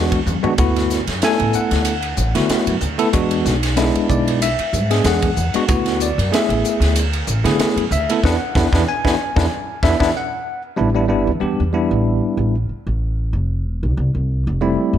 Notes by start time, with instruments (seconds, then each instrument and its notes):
Already playing: upright bass E2, tine electric piano G#3 B3 D4 F#4
0.12 kick, ride
0.26 upright bass E2, hi-hat pedal, high tom
0.43 tine electric piano G#3 B3 D4 F#4, muted upright bass stroke, floor tom
0.58 upright bass D2, tine electric piano A3 B3 E4 F#4, kick, hi-hat pedal, ride
0.76 snare, ride
0.90 snare, hi-hat pedal
1.07 upright bass F#2, snare, ride
1.22 tine electric piano A3 B3 E4 A4 G#5, snare, hi-hat pedal, ride
1.40 upright bass A1, ride
1.53 tine electric piano F#5, muted upright bass stroke, hi-hat pedal
1.71 upright bass D2, snare, ride
1.85 hi-hat pedal, ride
2.02 ride
2.17 upright bass A1, hi-hat pedal
2.35 upright bass D3, tine electric piano A3 B3 E4 F#4, snare, ride
2.49 muted upright bass stroke, snare, hi-hat pedal, ride
2.67 upright bass F#2, ride
2.81 upright bass D2, hi-hat pedal
2.98 tine electric piano A3 B3 E4 A4, ride
3.13 upright bass E2, tine electric piano G#3 B3 D4 F#4, kick, hi-hat pedal, ride
3.31 ride
3.45 upright bass B1, snare, hi-hat pedal
3.63 snare, ride
3.77 tine electric piano G#3 B3 D4 E4, snare, hi-hat pedal, ride
3.95 ride
4.09 upright bass B1, tine electric piano D5, kick, hi-hat pedal
4.28 ride
4.42 tine electric piano E5, hi-hat pedal, ride
4.58 muted upright bass stroke, ride
4.73 upright bass G#2, hi-hat pedal
4.90 tine electric piano G#3 B3 D4 G#4, snare, ride
5.04 upright bass E2, tine electric piano F#5, snare, hi-hat pedal, ride
5.22 kick, ride
5.37 upright bass E2, hi-hat pedal
5.54 tine electric piano G#3 B3 D4 F#4, muted upright bass stroke, ride
5.68 upright bass D2, tine electric piano A3 B3 E4 F#4, kick, hi-hat pedal, ride
5.86 snare, ride
6.00 tine electric piano D5, hi-hat pedal
6.18 upright bass F#2, ride
6.32 tine electric piano A3 B3 E4 G#4 E5, snare, hi-hat pedal, ride
6.49 upright bass A1, ride
6.63 muted upright bass stroke, hi-hat pedal
6.80 upright bass D2, snare, ride
6.96 hi-hat pedal, ride
7.13 ride
7.27 upright bass A1, hi-hat pedal
7.44 upright bass D3, tine electric piano A3 B3 E4 G#4, snare, ride
7.59 muted upright bass stroke, snare, hi-hat pedal, ride
7.76 upright bass F#2, ride
7.91 upright bass D2, tine electric piano E5, hi-hat pedal
8.10 tine electric piano A3 B3 E4 A4, ride
8.23 upright bass E2, tine electric piano B3 D4 E4 F#5, kick, snare
8.55 upright bass E2, tine electric piano B3 D4 E4, kick, snare
8.72 upright bass E2, tine electric piano B3 D4 E4, kick, snare
8.88 tine electric piano G#5
9.04 upright bass E2, tine electric piano B3 D4 E4, kick, snare
9.36 upright bass E2, tine electric piano B3 D4 E4, kick, snare
9.83 upright bass E2, tine electric piano B3 D4 E4 E5, kick, snare
10.00 upright bass E2, tine electric piano B3 D4 E4, kick, snare
10.17 tine electric piano F#5
10.76 upright bass A1, tine electric piano G3 B3 D4 E4
10.95 tine electric piano G3 B3 D4 E4
11.08 upright bass G1, tine electric piano G3 B3 D4 E4
11.27 upright bass E2
11.40 upright bass E2, tine electric piano G3 B3 D4 G4
11.60 upright bass E2
11.73 tine electric piano G3 B3 D4 E4
11.91 upright bass A1
12.37 upright bass A1
12.69 muted upright bass stroke
12.87 upright bass A1
13.33 upright bass F1
13.65 upright bass E1
13.83 upright bass C2
13.97 upright bass C2
14.15 upright bass C2
14.47 upright bass F1
14.61 tine electric piano G3 A3 C4 E4
14.93 upright bass F1